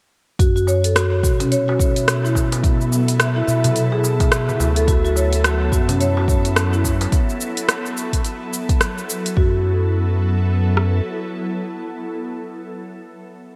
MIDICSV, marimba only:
0, 0, Header, 1, 2, 480
1, 0, Start_track
1, 0, Key_signature, 3, "minor"
1, 0, Tempo, 560748
1, 339, Time_signature, 4, 2, 24, 8
1, 11606, End_track
2, 0, Start_track
2, 0, Title_t, "Marimba"
2, 0, Program_c, 0, 12
2, 338, Note_on_c, 0, 66, 72
2, 466, Note_off_c, 0, 66, 0
2, 480, Note_on_c, 0, 66, 74
2, 573, Note_off_c, 0, 66, 0
2, 579, Note_on_c, 0, 73, 69
2, 714, Note_off_c, 0, 73, 0
2, 721, Note_on_c, 0, 69, 70
2, 809, Note_off_c, 0, 69, 0
2, 818, Note_on_c, 0, 66, 76
2, 953, Note_off_c, 0, 66, 0
2, 1058, Note_on_c, 0, 66, 69
2, 1186, Note_off_c, 0, 66, 0
2, 1199, Note_on_c, 0, 61, 71
2, 1255, Note_off_c, 0, 61, 0
2, 1298, Note_on_c, 0, 73, 80
2, 1426, Note_off_c, 0, 73, 0
2, 1441, Note_on_c, 0, 66, 73
2, 1534, Note_off_c, 0, 66, 0
2, 1541, Note_on_c, 0, 73, 70
2, 1674, Note_off_c, 0, 73, 0
2, 1923, Note_on_c, 0, 64, 70
2, 1977, Note_off_c, 0, 64, 0
2, 2878, Note_on_c, 0, 64, 70
2, 2935, Note_off_c, 0, 64, 0
2, 2975, Note_on_c, 0, 76, 73
2, 3344, Note_off_c, 0, 76, 0
2, 3357, Note_on_c, 0, 68, 74
2, 3414, Note_off_c, 0, 68, 0
2, 3939, Note_on_c, 0, 76, 74
2, 4066, Note_off_c, 0, 76, 0
2, 4081, Note_on_c, 0, 69, 76
2, 4137, Note_off_c, 0, 69, 0
2, 4179, Note_on_c, 0, 66, 77
2, 4306, Note_off_c, 0, 66, 0
2, 4320, Note_on_c, 0, 66, 75
2, 4413, Note_off_c, 0, 66, 0
2, 4420, Note_on_c, 0, 73, 75
2, 4554, Note_off_c, 0, 73, 0
2, 4562, Note_on_c, 0, 69, 69
2, 4650, Note_off_c, 0, 69, 0
2, 4659, Note_on_c, 0, 66, 74
2, 4794, Note_off_c, 0, 66, 0
2, 4900, Note_on_c, 0, 66, 73
2, 5027, Note_off_c, 0, 66, 0
2, 5038, Note_on_c, 0, 61, 70
2, 5095, Note_off_c, 0, 61, 0
2, 5140, Note_on_c, 0, 73, 79
2, 5267, Note_off_c, 0, 73, 0
2, 5281, Note_on_c, 0, 66, 74
2, 5374, Note_off_c, 0, 66, 0
2, 5379, Note_on_c, 0, 73, 73
2, 5513, Note_off_c, 0, 73, 0
2, 5762, Note_on_c, 0, 64, 72
2, 5817, Note_off_c, 0, 64, 0
2, 8021, Note_on_c, 0, 66, 84
2, 8243, Note_off_c, 0, 66, 0
2, 11606, End_track
0, 0, End_of_file